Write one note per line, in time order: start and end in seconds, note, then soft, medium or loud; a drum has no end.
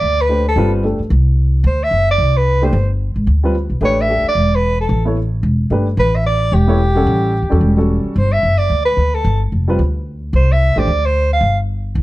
0.00 0.53 D2 medium
0.00 0.23 D5 medium
0.21 0.47 B4 medium
0.29 0.44 A3 soft
0.29 0.44 D4 soft
0.29 0.44 G4 soft
0.29 0.44 C5 medium
0.49 0.72 A4 medium
0.56 0.96 G1 medium
0.56 0.82 G3 medium
0.56 0.83 C4 medium
0.56 0.83 F4 medium
0.56 0.83 B4 medium
0.84 0.98 A3 soft
0.84 0.98 D4 soft
0.84 0.98 G4 soft
0.84 0.99 A4 medium
0.99 muted upright bass stroke soft
1.10 1.62 C2 medium
1.64 1.89 D2 medium
1.64 1.85 C5 medium
1.84 2.09 E5 medium
1.91 2.17 F#1 medium
2.11 2.39 D5 medium
2.18 2.70 C2 medium
2.37 2.66 B4 medium
2.62 2.72 A3 medium
2.62 2.72 D4 medium
2.62 2.72 G4 medium
2.62 2.73 C5 medium
2.62 2.90 C5 medium
2.73 3.13 G1 medium
3.16 3.26 G#1 medium
3.27 3.67 D2 medium
3.43 3.53 G3 medium
3.43 3.54 C4 medium
3.43 3.54 F4 medium
3.43 3.54 B4 medium
3.69 3.80 B1 medium
3.81 4.21 A1 medium
3.81 4.07 A3 medium
3.81 4.08 D4 medium
3.81 4.08 G4 medium
3.81 4.08 B4 medium
3.85 4.03 C#5 medium
4.01 4.27 E5 medium
4.09 4.23 A3 soft
4.09 4.23 D4 soft
4.09 4.24 G4 soft
4.09 4.24 A4 soft
4.24 muted upright bass stroke soft
4.28 4.57 D5 medium
4.35 4.87 E1 medium
4.56 4.80 B4 medium
4.81 5.05 A4 medium
4.89 5.41 A1 medium
5.05 5.16 B3 soft
5.05 5.16 E4 soft
5.05 5.16 A4 soft
5.05 5.16 C#5 medium
5.43 5.69 E1 medium
5.70 5.96 G1 medium
5.70 5.85 A3 medium
5.70 5.85 D4 medium
5.70 5.86 G4 medium
5.70 5.86 B4 medium
5.97 6.49 A1 medium
5.97 6.18 B4 loud
6.16 6.26 E5 medium
6.26 6.56 D5 medium
6.52 7.04 E1 medium
6.52 7.89 G4 medium
6.67 6.78 B3 medium
6.67 6.78 E4 medium
6.67 6.79 A4 medium
6.67 6.79 C#5 medium
6.95 7.31 G3 medium
6.95 7.32 C#4 medium
6.95 7.32 A4 medium
6.95 7.32 F#5 medium
7.06 7.40 A1 medium
7.42 7.51 D2 medium
7.50 7.60 E2 medium
7.50 7.75 G3 medium
7.50 7.75 C#4 medium
7.50 7.76 F#4 medium
7.50 7.76 A4 medium
7.61 8.01 E1 medium
7.77 8.13 G3 medium
7.77 8.13 C#4 soft
7.77 8.14 F#4 medium
7.77 8.14 A4 medium
8.04 muted upright bass stroke soft
8.16 8.41 G1 medium
8.16 8.34 C5 medium
8.32 8.60 E5 medium
8.43 8.68 F#1 medium
8.58 8.85 D5 medium
8.70 8.95 D2 medium
8.85 9.16 B4 medium
8.97 9.22 D2 medium
9.15 9.41 A4 medium
9.24 9.50 G1 medium
9.52 9.77 F1 medium
9.68 9.78 G3 medium
9.68 9.78 C4 medium
9.68 9.78 F4 medium
9.68 9.79 B4 medium
9.79 10.31 D2 medium
10.33 10.73 C2 medium
10.33 10.54 C5 medium
10.52 10.80 E5 medium
10.76 10.87 A1 medium
10.76 10.86 A3 medium
10.76 10.87 D4 medium
10.76 10.87 G4 medium
10.76 10.87 C5 medium
10.76 11.07 D5 medium
10.87 11.39 D2 medium
11.06 11.32 C5 medium
11.33 11.57 F5 medium
11.41 11.93 G1 medium
11.95 12.03 C2 medium